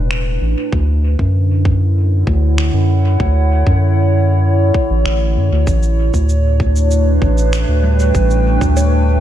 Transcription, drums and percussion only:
0.11 finger snap medium
0.72 kick loud
1.19 kick medium
1.65 kick loud
2.27 kick loud
2.58 finger snap medium
3.20 kick loud
3.67 kick loud
4.74 kick loud
5.06 finger snap medium
5.67 kick loud
5.67 shaker soft
5.83 shaker soft
6.14 kick medium
6.14 shaker soft
6.29 shaker soft
6.60 kick loud
6.76 shaker soft
6.91 shaker soft
7.22 kick loud
7.38 shaker soft
7.53 finger snap medium
7.53 shaker soft
8.00 shaker soft
8.15 kick loud
8.15 shaker soft
8.30 shaker soft
8.61 kick loud
8.61 shaker soft
8.77 shaker soft

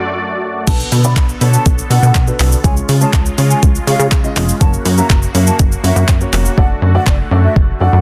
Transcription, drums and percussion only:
0.67 kick loud
0.67 closed hi-hat medium
0.67 crash loud
0.67 shaker medium
0.80 shaker medium
0.92 open hi-hat medium
0.92 shaker medium
1.04 shaker medium
1.16 kick loud
1.16 clap medium
1.16 clap loud
1.16 closed hi-hat medium
1.16 shaker medium
1.29 shaker medium
1.41 open hi-hat medium
1.41 shaker medium
1.53 shaker medium
1.66 kick loud
1.66 closed hi-hat medium
1.66 shaker medium
1.78 shaker medium
1.91 open hi-hat medium
1.91 shaker medium
2.03 shaker medium
2.15 kick loud
2.15 clap loud
2.15 closed hi-hat medium
2.15 shaker medium
2.27 shaker soft
2.39 clap medium
2.39 open hi-hat medium
2.39 shaker medium
2.52 shaker medium
2.64 kick loud
2.64 closed hi-hat medium
2.64 shaker medium
2.77 shaker medium
2.89 open hi-hat medium
2.89 shaker medium
3.01 shaker medium
3.13 kick loud
3.13 clap medium
3.13 clap loud
3.13 closed hi-hat medium
3.13 shaker medium
3.26 shaker medium
3.38 open hi-hat medium
3.38 shaker medium
3.51 shaker medium
3.63 kick loud
3.63 closed hi-hat medium
3.63 shaker medium
3.75 shaker medium
3.88 open hi-hat medium
3.88 shaker medium
4.00 shaker medium
4.12 kick loud
4.12 clap loud
4.12 closed hi-hat medium
4.12 shaker medium
4.24 shaker soft
4.36 clap medium
4.36 open hi-hat medium
4.36 shaker medium
4.49 shaker medium
4.61 kick loud
4.61 closed hi-hat medium
4.61 shaker medium
4.73 shaker medium
4.85 open hi-hat medium
4.85 shaker medium
4.98 shaker medium
5.10 kick loud
5.10 clap medium
5.10 clap loud
5.10 closed hi-hat medium
5.10 shaker medium
5.22 shaker medium
5.35 open hi-hat medium
5.35 shaker medium
5.47 shaker medium
5.59 kick loud
5.59 closed hi-hat medium
5.59 shaker medium
5.72 shaker medium
5.84 open hi-hat medium
5.84 shaker medium
5.96 shaker medium
6.08 kick loud
6.08 clap loud
6.08 closed hi-hat medium
6.08 shaker medium
6.21 shaker soft
6.33 clap medium
6.33 open hi-hat medium
6.33 shaker medium
6.45 shaker medium
6.58 kick loud
7.07 kick loud
7.07 clap medium
7.07 clap loud
7.56 kick loud

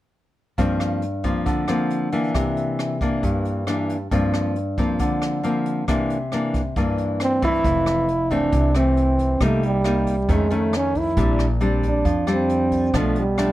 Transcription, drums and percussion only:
0.58 kick medium
0.58 closed hi-hat medium
0.80 cross-stick medium
0.80 closed hi-hat soft
1.02 closed hi-hat soft
1.24 kick soft
1.24 closed hi-hat soft
1.46 kick medium
1.46 closed hi-hat medium
1.68 cross-stick medium
1.68 closed hi-hat soft
1.90 closed hi-hat soft
2.12 closed hi-hat soft
2.35 kick medium
2.35 cross-stick medium
2.35 closed hi-hat medium
2.57 closed hi-hat soft
2.79 cross-stick soft
2.79 closed hi-hat soft
3.01 kick medium
3.01 closed hi-hat soft
3.23 kick medium
3.23 closed hi-hat soft
3.45 closed hi-hat soft
3.67 cross-stick medium
3.67 closed hi-hat soft
3.89 closed hi-hat soft
4.11 kick medium
4.11 closed hi-hat medium
4.34 cross-stick medium
4.34 closed hi-hat soft
4.56 closed hi-hat soft
4.78 kick medium
4.78 closed hi-hat soft
4.99 kick medium
4.99 closed hi-hat medium
5.22 cross-stick medium
5.22 closed hi-hat soft
5.44 closed hi-hat soft
5.66 closed hi-hat soft
5.88 kick medium
5.88 cross-stick medium
5.88 closed hi-hat medium
6.10 closed hi-hat soft
6.32 cross-stick soft
6.32 closed hi-hat soft
6.54 kick medium
6.54 closed hi-hat soft
6.76 kick medium
6.76 closed hi-hat soft
6.98 closed hi-hat soft
7.20 cross-stick medium
7.20 closed hi-hat soft
7.42 kick soft
7.42 closed hi-hat soft
7.64 kick medium
7.64 closed hi-hat medium
7.86 cross-stick medium
7.86 closed hi-hat soft
8.08 closed hi-hat soft
8.31 kick soft
8.31 closed hi-hat soft
8.52 kick medium
8.52 closed hi-hat medium
8.75 cross-stick soft
8.75 closed hi-hat soft
8.97 closed hi-hat soft
9.19 kick soft
9.19 closed hi-hat soft
9.41 kick medium
9.41 cross-stick medium
9.41 closed hi-hat medium
9.63 closed hi-hat soft
9.84 cross-stick medium
9.84 closed hi-hat soft
10.07 kick soft
10.07 closed hi-hat soft
10.29 kick medium
10.29 closed hi-hat soft
10.51 closed hi-hat soft
10.73 cross-stick medium
10.73 closed hi-hat soft
10.95 kick soft
10.95 closed hi-hat soft
11.17 kick medium
11.17 closed hi-hat medium
11.39 cross-stick soft
11.39 closed hi-hat soft
11.61 closed hi-hat soft
11.83 kick soft
11.83 closed hi-hat soft
12.05 kick soft
12.05 closed hi-hat soft
12.27 cross-stick soft
12.27 closed hi-hat soft
12.49 closed hi-hat soft
12.71 kick soft
12.71 closed hi-hat soft
12.94 kick medium
12.94 cross-stick medium
12.94 closed hi-hat medium
13.16 closed hi-hat soft
13.38 cross-stick medium
13.38 closed hi-hat soft

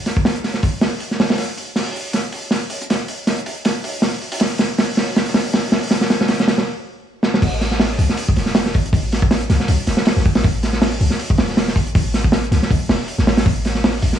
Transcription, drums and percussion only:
0.06 snare soft
0.06 open hi-hat medium
0.17 kick loud
0.25 snare loud
0.25 open hi-hat medium
0.35 closed hi-hat soft
0.44 snare soft
0.44 open hi-hat medium
0.54 snare soft
0.63 kick loud
0.63 open hi-hat medium
0.81 snare loud
0.81 open hi-hat medium
1.00 open hi-hat medium
1.11 snare soft
1.20 snare loud
1.20 open hi-hat medium
1.29 snare loud
1.29 open hi-hat medium
1.38 snare soft
1.38 open hi-hat medium
1.57 open hi-hat medium
1.76 snare medium
1.76 open hi-hat medium
1.96 open hi-hat medium
2.13 snare soft
2.13 open hi-hat medium
2.32 open hi-hat medium
2.51 snare medium
2.51 open hi-hat medium
2.70 open hi-hat medium
2.81 closed hi-hat soft
2.90 snare medium
2.90 open hi-hat medium
3.08 open hi-hat medium
3.27 snare medium
3.27 open hi-hat medium
3.38 closed hi-hat soft
3.46 open hi-hat medium
3.65 snare medium
3.65 open hi-hat medium
3.84 open hi-hat medium
4.02 snare medium
4.02 open hi-hat medium
4.22 open hi-hat medium
4.32 open hi-hat medium
4.40 snare medium
4.40 open hi-hat loud
4.58 snare medium
4.58 open hi-hat medium
4.78 snare medium
4.78 open hi-hat medium
4.97 snare medium
4.97 open hi-hat medium
5.16 snare medium
5.16 open hi-hat medium
5.26 open hi-hat medium
5.34 snare medium
5.34 open hi-hat medium
5.46 open hi-hat medium
5.53 snare medium
5.53 open hi-hat medium
5.72 snare medium
5.72 open hi-hat medium
5.83 open hi-hat medium
5.87 snare medium
5.87 open hi-hat medium
5.92 open hi-hat loud
6.01 snare medium
6.10 snare medium
6.10 open hi-hat medium
6.21 snare medium
6.28 snare medium
6.28 open hi-hat medium
6.39 snare medium
6.39 closed hi-hat soft
6.48 snare loud
6.48 open hi-hat medium
6.58 snare medium
7.23 snare medium
7.34 snare medium
7.42 kick loud
7.42 open hi-hat medium
7.42 crash loud
7.61 snare soft
7.61 open hi-hat medium
7.71 snare soft
7.80 snare loud
7.80 open hi-hat medium
7.99 open hi-hat medium
8.09 snare soft
8.17 open hi-hat medium
8.29 kick loud
8.37 snare soft
8.37 open hi-hat medium
8.46 snare soft
8.55 snare loud
8.55 open hi-hat medium
8.66 snare medium
8.74 kick loud
8.74 open hi-hat medium
8.86 closed hi-hat soft
8.93 kick loud
8.93 open hi-hat medium
9.12 snare soft
9.12 open hi-hat medium
9.22 kick loud
9.31 snare loud
9.31 open hi-hat medium
9.41 closed hi-hat soft
9.50 snare soft
9.50 open hi-hat medium
9.60 snare soft
9.68 open hi-hat medium
9.87 snare soft
9.87 open hi-hat medium
9.97 snare medium
10.05 snare loud
10.05 open hi-hat medium
10.18 snare soft
10.25 kick medium
10.25 open hi-hat medium
10.35 snare loud
10.35 open hi-hat medium
10.44 kick loud
10.44 open hi-hat medium
10.63 snare soft
10.63 open hi-hat medium
10.73 snare soft
10.82 snare loud
10.82 open hi-hat medium
11.01 open hi-hat medium
11.10 snare soft
11.20 open hi-hat medium
11.30 kick medium
11.38 snare loud
11.38 open hi-hat medium
11.48 snare soft
11.57 snare loud
11.57 open hi-hat medium
11.68 snare medium
11.76 kick loud
11.76 open hi-hat medium
11.87 closed hi-hat soft
11.95 kick loud
11.95 open hi-hat medium
12.14 snare medium
12.14 open hi-hat medium
12.24 kick medium
12.32 snare loud
12.32 open hi-hat medium
12.44 closed hi-hat soft
12.52 snare soft
12.52 open hi-hat medium
12.63 snare soft
12.71 kick medium
12.71 open hi-hat medium
12.89 snare loud
12.89 open hi-hat medium
13.08 open hi-hat medium
13.19 snare soft
13.27 snare loud
13.27 open hi-hat medium
13.37 snare loud
13.37 open hi-hat medium
13.46 kick loud
13.46 open hi-hat medium
13.65 snare soft
13.65 open hi-hat medium
13.75 snare soft
13.84 snare loud
13.84 open hi-hat medium
14.02 open hi-hat medium
14.13 snare soft

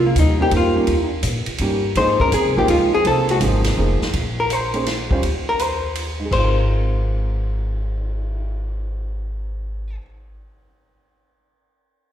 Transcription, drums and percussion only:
0.16 kick soft
0.16 hi-hat pedal soft
0.16 ride medium
0.51 kick soft
0.51 ride medium
0.87 kick soft
0.87 ride medium
1.23 kick soft
1.23 hi-hat pedal medium
1.23 ride medium
1.46 ride soft
1.58 kick soft
1.58 ride medium
1.95 kick soft
1.95 ride medium
2.20 kick medium
2.32 kick soft
2.32 hi-hat pedal medium
2.32 ride medium
2.68 kick soft
2.68 ride medium
3.05 kick soft
3.05 ride medium
3.29 ride soft
3.41 kick soft
3.41 hi-hat pedal soft
3.41 ride medium
3.64 snare soft
3.64 ride medium
3.78 kick soft
4.02 snare soft
4.13 kick soft
4.13 ride medium
4.50 hi-hat pedal soft
4.50 ride medium
4.74 ride soft
4.86 snare soft
4.86 ride medium
5.11 kick medium
5.23 kick soft
5.23 ride medium
5.59 hi-hat pedal soft
5.59 ride medium
5.95 ride medium
6.32 kick soft
6.32 crash medium
6.56 cymbal swell soft

